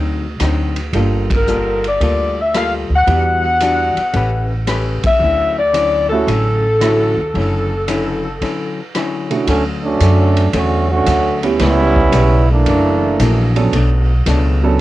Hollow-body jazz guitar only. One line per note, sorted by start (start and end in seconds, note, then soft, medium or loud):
0.00 0.25 D3 soft
0.00 0.26 F#3 soft
0.00 0.26 C4 soft
0.00 0.26 D#4 medium
0.40 0.79 D3 medium
0.40 0.79 F#3 medium
0.40 0.79 C4 medium
0.40 0.80 D#4 medium
0.95 1.33 G3 medium
0.95 1.33 A#3 soft
0.95 1.33 F4 soft
0.95 1.33 A4 medium
1.48 1.86 G3 medium
1.48 1.86 A#3 medium
1.48 1.87 F4 medium
1.48 1.87 A4 medium
2.01 2.39 G3 soft
2.01 2.40 A#3 soft
2.01 2.40 F4 soft
2.01 2.40 A4 soft
2.54 2.93 G3 medium
2.54 2.93 A#3 medium
2.54 2.93 F4 medium
2.54 2.93 A4 medium
3.08 3.46 E3 soft
3.08 3.47 G3 soft
3.08 3.47 D4 soft
3.08 3.47 F#4 soft
3.61 3.99 E3 medium
3.61 3.99 G3 medium
3.61 4.00 D4 medium
3.61 4.00 F#4 medium
4.13 4.52 A3 soft
4.13 4.53 C#4 medium
4.13 4.53 G4 soft
4.13 4.54 B4 medium
4.67 5.06 A3 medium
4.67 5.06 C#4 medium
4.67 5.06 G4 medium
4.67 5.07 B4 medium
5.22 5.60 D3 soft
5.22 5.60 F#3 soft
5.22 5.60 C#4 soft
5.22 5.61 E4 medium
5.73 6.12 D3 medium
5.73 6.13 F#3 medium
5.73 6.13 C#4 medium
5.73 6.13 E4 medium
6.27 6.65 D3 soft
6.27 6.66 F#3 soft
6.27 6.66 C#4 soft
6.27 6.67 E4 soft
6.80 7.19 D3 medium
6.80 7.19 F#3 medium
6.80 7.20 C#4 medium
6.80 7.20 E4 medium
7.35 7.73 D3 soft
7.35 7.73 F#3 medium
7.35 7.74 C#4 medium
7.35 7.74 E4 medium
7.88 8.26 D3 medium
7.88 8.27 F#3 medium
7.88 8.27 C#4 medium
7.88 8.27 E4 medium
8.42 8.80 D3 soft
8.42 8.80 F#3 soft
8.42 8.80 C#4 medium
8.42 8.81 E4 soft
8.96 9.33 D3 medium
8.96 9.33 F#3 medium
8.96 9.34 C#4 medium
8.96 9.34 E4 medium
9.48 9.86 D3 soft
9.48 9.86 F#3 soft
9.48 9.87 A3 soft
9.48 9.87 C#4 medium
10.02 10.39 D3 medium
10.02 10.39 F#3 medium
10.02 10.40 A3 medium
10.02 10.40 C#4 medium
10.53 10.92 D3 soft
10.53 10.92 F#3 soft
10.53 10.92 A3 soft
10.53 10.93 C#4 soft
11.07 11.45 D3 medium
11.07 11.45 F#3 medium
11.07 11.46 A3 medium
11.07 11.46 C#4 medium
11.60 11.99 C#3 soft
11.60 11.99 G3 soft
11.60 11.99 B3 soft
11.60 12.00 E4 medium
12.12 12.51 C#3 medium
12.12 12.52 G3 medium
12.12 12.52 B3 medium
12.12 12.52 E4 medium
12.67 13.05 F#2 soft
12.67 13.06 E3 medium
12.67 13.06 A#3 soft
12.67 13.07 D4 medium
13.20 13.58 F#2 medium
13.20 13.59 E3 medium
13.20 13.59 A#3 medium
13.20 13.59 D4 medium
13.74 14.12 B2 medium
13.74 14.12 F#3 soft
13.74 14.13 A3 medium
13.74 14.13 D4 medium
14.27 14.65 B2 medium
14.27 14.66 F#3 medium
14.27 14.66 A3 medium
14.27 14.66 D4 medium